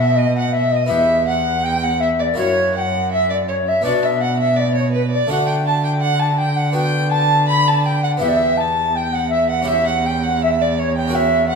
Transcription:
Already playing: B2 B3 F#4 A4 E5
0.00 E5
0.15 D#5
0.35 F#5
0.52 E5
0.57 E5
0.71 D#5
0.76 D#5
0.86 E2 B3 E4 G4 E5
0.91 E2 E5
1.26 F#5
1.63 G5
1.83 F#5
2.00 E5
2.19 D5
2.34 F#2 A#3 E4 F#4 C#5
2.38 C#5
2.75 F#5 G5
2.80 F#5
3.12 E5
3.30 D5
3.49 C#5
3.67 E5
3.82 B3 D4 F#4 D5
3.86 B2
4.03 E5
4.21 F#5
4.40 E5
4.56 D5
4.75 C#5
4.79 C#5
4.93 B4
5.11 D5
5.27 A3 D4 F#4 F#5
5.31 D3
5.47 G5
5.66 A5
5.85 G5
6.01 F#5
6.20 A5
6.38 G5
6.56 F#5
6.72 B3 F#4 G5
7.11 A5
7.48 B5
7.68 A5
7.85 G5
8.03 F#5
8.17 B3 E4 G4
8.21 E2 E5
8.28 D5
8.36 E5
8.57 A5
8.95 G5
9.12 F#5
9.30 E5
9.50 F#5
9.62 C#4 E4 G4
9.68 E5
9.87 F#5
10.06 G5
10.23 F#5
10.42 E5
10.61 D5
10.79 C#5
10.97 G5
11.07 C#4 F#4 A#4
11.15 E5
11.47 F#5

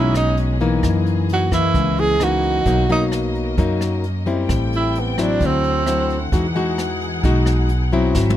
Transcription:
Already playing: B1 B2 G#3 C#4 D#4 E4 F#4 G#4 D#5
0.15 D#4, cross-stick, closed hi-hat
0.37 closed hi-hat
0.60 E3 A#3 D#4, closed hi-hat
0.82 F#2 A#3 D#5, kick, cross-stick, closed hi-hat
1.06 closed hi-hat
1.29 closed hi-hat
1.33 F#4
1.52 E3 A#3 E4, kick, cross-stick, closed hi-hat
1.74 C#2 C#3, kick, closed hi-hat
1.97 G#4, closed hi-hat
2.20 E3 A#3 D#4 F#4, cross-stick, closed hi-hat
2.43 closed hi-hat
2.66 B1 B2 F#3 A#3 D#4 A#4, kick, closed hi-hat
2.89 F#3 A#3 D#4, closed hi-hat
3.12 cross-stick, closed hi-hat
3.35 closed hi-hat
3.58 F#2 F#3 A#3 D#4, kick, closed hi-hat
3.81 cross-stick, closed hi-hat
4.04 closed hi-hat
4.26 G3 C4 E4, closed hi-hat
4.49 A1 A2 C4 A4 G5, kick, cross-stick, closed hi-hat
4.72 E4, closed hi-hat
4.95 closed hi-hat
5.00 B3
5.18 F#3 C4 D4 E4, cross-stick, closed hi-hat
5.41 D2 D3 E4 C5 F#5, kick, closed hi-hat
5.46 C4
5.64 closed hi-hat
5.87 F#3 C4 E4, cross-stick, closed hi-hat
6.10 closed hi-hat
6.32 E2 E3 G#3 D#4 F#4 G#4, kick, closed hi-hat
6.56 G#3 D#4 F#4, closed hi-hat
6.78 cross-stick, closed hi-hat
7.01 closed hi-hat
7.23 B1 B2 G#3 D#4 F#4, kick, closed hi-hat
7.46 cross-stick, closed hi-hat
7.69 closed hi-hat
7.92 F#3 C4 E4, closed hi-hat
8.15 G#1 G#2 C4 F#4 E5, kick, snare
8.30 high tom

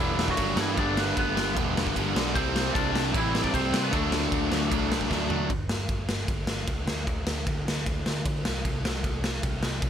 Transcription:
Already playing: G2 D3 G3 D4
0.00 E1 D3 E3 G3 B3 D4 E4
0.19 snare
0.28 F#3 F#4, kick
0.37 G1 G2 D3 G3, kick, ride
0.57 G2 D3 E3 G3 E4, snare
0.76 G1 G2 D3 G3 D4 D5, kick, ride
0.80 B3 D4
0.97 B3 B4, snare
1.16 G1 B3 B4, kick, ride
1.35 G1 G2 D3 G3, snare
1.55 E1 G2 D3 G3 B3 D4, kick, ride
1.77 snare
1.87 kick
1.95 G1 G2 D3 G3, kick, ride
2.14 B1 G2 D3 G3, snare
2.34 C2 C3 G3 C4 E4 C5, kick, ride
2.56 snare
2.74 C2 D4 D5, kick, ride
2.94 C2 C3 G3 C4, snare
3.13 A1 C3 E3 G3 C4 E4, kick, ride
3.18 E4
3.35 snare
3.43 D4 D5, kick
3.52 C2 C3 G3 C4 C5, kick, ride
3.72 C3 G3 C4, snare
3.82 B3 B4
3.91 D2 D3 F#3 A3 D4 A4, kick, ride
4.12 snare
4.32 D2, kick, ride
4.51 D2 D3 A3 D4, snare
4.70 C2 D3 F#3 A3 D4, kick, ride
4.92 snare
5.01 kick
5.09 D2 D3 A3 D4, kick, snare
5.29 D3 A3 D4, floor tom
5.50 G1, kick, ride
5.69 G1, snare
5.88 G1, kick, ride
6.09 snare
6.28 G1, kick, ride
6.47 G1, snare
6.67 C#2, kick, ride
6.87 D2, snare
7.07 D2, kick, ride
7.27 D2, snare
7.47 D2, kick, ride
7.65 D2, snare
7.86 D2, kick, ride
8.06 D2, snare
8.26 D2, kick, ride
8.45 C2, snare
8.65 C2, kick, ride
8.85 C2, snare
9.04 C2, kick, ride
9.24 snare
9.43 C2, kick, ride
9.63 C2, snare
9.82 C2, kick, ride

